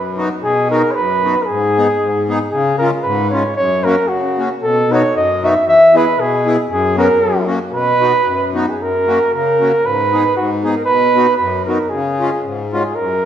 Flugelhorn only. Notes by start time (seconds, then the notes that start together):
Already playing: B4
0.43 G#4
0.71 A#4
0.91 B4 C#5
1.42 G#4 A#4
2.51 G#4
2.78 A#4
3.02 B4
3.30 C#5
3.56 C#5
3.84 A#4
4.08 F#4
4.62 A4
4.92 C#5
5.17 D#5
5.44 E5
5.68 E5
5.97 B4
6.20 G#4
6.71 G#4
6.98 A#4
7.74 B4
8.57 F#4
8.69 G#4
8.82 A#4
9.34 A#4
9.85 B4
10.36 F#4
10.63 G#4
10.74 A#4
10.85 B4
11.37 B4
11.65 A#4
11.89 G#4
12.73 F#4
12.84 G#4
12.95 A#4